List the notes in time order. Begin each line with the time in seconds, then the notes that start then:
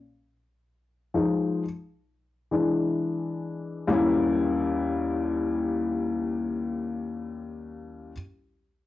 1.14 F3 G#3 D#4
2.51 E3 G#3 D4
3.87 D#2 G3 A#3 C#4
3.92 E4